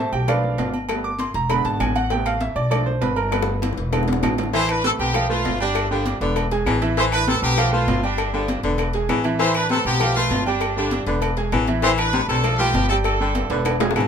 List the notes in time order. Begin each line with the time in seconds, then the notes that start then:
Already playing: B2 C3 A3 A5
0.00 A4 C5 E5
0.12 B1 G4 G5, high conga, low agogo
0.28 F3 A3 D4 F4 B4 D5 F5, cowbell, high conga, low conga, low agogo, claves
0.44 high conga, low conga
0.58 G1, cowbell, high conga, low timbale, low agogo
0.73 high conga, low agogo
0.89 G3 A3 B3, cowbell, low agogo, claves
1.04 D6, high conga
1.19 C6, cowbell, high conga, low timbale, low agogo
1.34 E1 A#5, cowbell, high conga
1.50 D3 G#3 B3 B5, cowbell, high conga, low agogo, claves
1.65 G#1 A5, cowbell, high conga
1.80 A1 G#5, cowbell, high conga, low timbale, low agogo, claves
1.95 F#5, cowbell, high conga, low agogo
2.10 C3 A3 B3 G5, cowbell, low agogo
2.26 F5, cowbell, high conga, low agogo, claves
2.41 E5, cowbell, high conga, low timbale
2.56 B1 D5, high conga, low agogo
2.70 F3 A3 D4 D5, cowbell, high conga, low conga, low agogo, claves
2.86 C5, high conga, low conga
3.01 G1 B4, cowbell, high conga, low timbale, low agogo
3.16 A#4, low agogo
3.31 G3 A3 B3 B4, cowbell, high bongo, high conga, low agogo, claves
3.42 high bongo
3.48 high conga
3.62 cowbell, low bongo, high conga, high timbale, low agogo
3.73 low bongo
3.77 E1, cowbell, high conga
3.92 D3 G#3 B3, cowbell, low bongo, high conga, high timbale, low agogo, claves
4.03 low bongo
4.08 cowbell, high conga, low timbale
4.13 low bongo
4.23 A1, cowbell, low bongo, high conga, low timbale, low agogo, claves
4.38 cowbell, low conga, low timbale, low agogo
4.43 low bongo
4.53 E3 E4 C5 E5, cowbell, high conga, low agogo
4.69 D4 B4, cowbell, high conga, low agogo, claves
4.84 C3 A3 C4 A4 B4, cowbell, high conga, low timbale
4.99 B1 C3 B3 G4, low agogo
5.14 F3 F4 F5, cowbell, high conga, low conga, low agogo, claves
5.29 F3 A3 F4 A4 B4, high conga, low conga
5.45 G1, cowbell, high conga, low timbale, low agogo
5.60 G3 D4 G4 G5, low agogo
5.75 cowbell, high conga, low agogo, claves
5.91 D3 F3 G3 D4 G4 G5, high conga
6.06 cowbell, high conga, low timbale, low agogo
6.21 E1 D3 B3 B4 D5, cowbell
6.36 cowbell, high conga, low agogo, claves
6.51 G#3 G#4 G#5, cowbell, high conga
6.66 A1 E3, cowbell, high conga, low timbale, low agogo, claves
6.82 E3 E4 E5, cowbell, high conga, low agogo
6.97 E3 E4 C5 E5, cowbell, high conga, low agogo
7.12 D4 B4, cowbell, high conga, low agogo, claves
7.27 C3 A3 C4 A4 B4, cowbell, high conga, low timbale
7.42 B1 C3 B3 G4, high conga, low agogo
7.57 F3 F4 F5, cowbell, high conga, low conga, low agogo, claves
7.72 F3 A3 F4 A4 B4, high conga, low conga
7.87 G1, cowbell, high conga, low timbale, low agogo
8.03 G3 D4 G4 G5, low agogo
8.18 cowbell, high conga, low agogo, claves
8.33 D3 F3 G3 D4 G4 G5, high conga
8.48 cowbell, high conga, low timbale, low agogo
8.63 E1 D3 B3 B4 D5, cowbell, high conga
8.78 cowbell, high conga, low agogo, claves
8.93 G#3 G#4 G#5, cowbell, high conga
9.09 A1 E3, cowbell, high conga, low timbale, low agogo, claves
9.24 E3 E4 E5, cowbell, high conga, low agogo
9.39 E3 E4 C5 E5, cowbell, high conga, low agogo
9.54 D4 B4, cowbell, high conga, low agogo, claves
9.69 C3 A3 C4 A4 B4, cowbell, high conga, low timbale
9.85 B1 C3 B3 G4, low agogo
10.00 F3 F4 F5, cowbell, high conga, low conga, low agogo, claves
10.16 F3 A3 F4 A4 B4, high conga
10.31 G1, cowbell, high conga, low timbale, low agogo
10.46 G3 D4 G4 G5, high conga, low agogo
10.61 cowbell, high conga, low agogo, claves
10.77 D3 F3 G3 D4 G4 G5, high conga
10.91 cowbell, high conga, low timbale, low agogo
11.07 E1 D3 B3 B4 D5, cowbell, high conga
11.22 cowbell, high conga, low agogo, claves
11.37 G#3 G#4 G#5, cowbell, high conga
11.52 A1 E3, cowbell, high conga, low timbale, low agogo, claves
11.67 E3 E4 E5, cowbell, high conga, low agogo
11.82 E3 E4 C5 E5, cowbell, high conga, low agogo
11.98 D4 B4, cowbell, high conga, low agogo, claves
12.13 C3 A3 A4 B4, cowbell, high conga, low timbale
12.28 B1 C3 D4 A4, high conga, low agogo
12.44 F3 F4 F5, cowbell, high conga, low conga, low agogo, claves
12.58 F3 A3 B3 G4 A4 B4, high conga, low conga
12.74 G1, cowbell, high conga, low timbale, low agogo
12.89 G3 C4 G4 A4 G5, low agogo
13.04 D4 A4, cowbell, high conga, low agogo, claves
13.20 D3 G3 G4 G5, high conga
13.35 cowbell, high conga, high timbale, low agogo
13.50 E1 D3 B3 B4 D5, cowbell, high conga, high timbale
13.65 cowbell, high conga, high timbale, low agogo, claves
13.80 G#3 G#4 G#5, cowbell, high bongo, high conga, low timbale
13.91 high bongo
13.96 A1 E3, cowbell, high conga, low timbale, low agogo, claves
14.01 low bongo